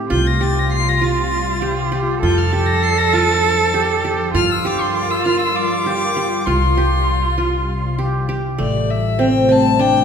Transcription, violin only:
0, 0, Header, 1, 2, 480
1, 0, Start_track
1, 0, Tempo, 605449
1, 85, Time_signature, 7, 3, 24, 8
1, 7964, End_track
2, 0, Start_track
2, 0, Title_t, "Violin"
2, 0, Program_c, 0, 40
2, 88, Note_on_c, 0, 91, 88
2, 215, Note_on_c, 0, 94, 82
2, 226, Note_off_c, 0, 91, 0
2, 337, Note_on_c, 0, 93, 92
2, 349, Note_off_c, 0, 94, 0
2, 467, Note_on_c, 0, 94, 85
2, 479, Note_off_c, 0, 93, 0
2, 571, Note_off_c, 0, 94, 0
2, 576, Note_on_c, 0, 96, 102
2, 702, Note_on_c, 0, 94, 90
2, 714, Note_off_c, 0, 96, 0
2, 825, Note_on_c, 0, 93, 94
2, 837, Note_off_c, 0, 94, 0
2, 1535, Note_off_c, 0, 93, 0
2, 1775, Note_on_c, 0, 91, 89
2, 1887, Note_on_c, 0, 89, 79
2, 1899, Note_off_c, 0, 91, 0
2, 1994, Note_on_c, 0, 93, 91
2, 2006, Note_off_c, 0, 89, 0
2, 2110, Note_on_c, 0, 94, 93
2, 2122, Note_off_c, 0, 93, 0
2, 2244, Note_on_c, 0, 96, 106
2, 2256, Note_off_c, 0, 94, 0
2, 2363, Note_on_c, 0, 94, 100
2, 2375, Note_off_c, 0, 96, 0
2, 2481, Note_on_c, 0, 93, 102
2, 2493, Note_off_c, 0, 94, 0
2, 3202, Note_off_c, 0, 93, 0
2, 3454, Note_on_c, 0, 89, 110
2, 3577, Note_on_c, 0, 88, 93
2, 3589, Note_off_c, 0, 89, 0
2, 3700, Note_on_c, 0, 86, 102
2, 3712, Note_off_c, 0, 88, 0
2, 3815, Note_on_c, 0, 84, 87
2, 3827, Note_off_c, 0, 86, 0
2, 3926, Note_on_c, 0, 86, 94
2, 3938, Note_off_c, 0, 84, 0
2, 4050, Note_on_c, 0, 88, 94
2, 4062, Note_off_c, 0, 86, 0
2, 4167, Note_off_c, 0, 88, 0
2, 4174, Note_on_c, 0, 89, 105
2, 4279, Note_off_c, 0, 89, 0
2, 4284, Note_on_c, 0, 88, 96
2, 4404, Note_on_c, 0, 86, 110
2, 4415, Note_off_c, 0, 88, 0
2, 5120, Note_on_c, 0, 84, 90
2, 5132, Note_off_c, 0, 86, 0
2, 6321, Note_off_c, 0, 84, 0
2, 6830, Note_on_c, 0, 74, 88
2, 7060, Note_on_c, 0, 76, 86
2, 7072, Note_off_c, 0, 74, 0
2, 7302, Note_on_c, 0, 79, 95
2, 7313, Note_off_c, 0, 76, 0
2, 7541, Note_on_c, 0, 81, 103
2, 7553, Note_off_c, 0, 79, 0
2, 7775, Note_on_c, 0, 79, 104
2, 7787, Note_off_c, 0, 81, 0
2, 7964, Note_off_c, 0, 79, 0
2, 7964, End_track
0, 0, End_of_file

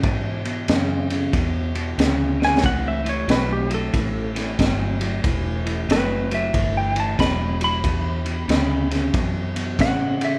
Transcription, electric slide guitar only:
0, 0, Header, 1, 2, 480
1, 0, Start_track
1, 0, Tempo, 650759
1, 25, Time_signature, 4, 2, 24, 8
1, 7661, End_track
2, 0, Start_track
2, 0, Title_t, "Electric slide guitar"
2, 0, Program_c, 0, 29
2, 1804, Note_on_c, 0, 80, 97
2, 1949, Note_off_c, 0, 80, 0
2, 1959, Note_on_c, 0, 78, 93
2, 2107, Note_off_c, 0, 78, 0
2, 2124, Note_on_c, 0, 76, 103
2, 2269, Note_off_c, 0, 76, 0
2, 2281, Note_on_c, 0, 73, 89
2, 2428, Note_off_c, 0, 73, 0
2, 2443, Note_on_c, 0, 71, 88
2, 2589, Note_off_c, 0, 71, 0
2, 2601, Note_on_c, 0, 67, 79
2, 2747, Note_off_c, 0, 67, 0
2, 2761, Note_on_c, 0, 69, 98
2, 3218, Note_off_c, 0, 69, 0
2, 4367, Note_on_c, 0, 71, 103
2, 4665, Note_off_c, 0, 71, 0
2, 4681, Note_on_c, 0, 76, 86
2, 4982, Note_off_c, 0, 76, 0
2, 4996, Note_on_c, 0, 79, 89
2, 5145, Note_off_c, 0, 79, 0
2, 5161, Note_on_c, 0, 81, 90
2, 5307, Note_off_c, 0, 81, 0
2, 5311, Note_on_c, 0, 83, 96
2, 5617, Note_off_c, 0, 83, 0
2, 5637, Note_on_c, 0, 83, 93
2, 6561, Note_off_c, 0, 83, 0
2, 7239, Note_on_c, 0, 78, 110
2, 7541, Note_off_c, 0, 78, 0
2, 7558, Note_on_c, 0, 76, 80
2, 7661, Note_off_c, 0, 76, 0
2, 7661, End_track
0, 0, End_of_file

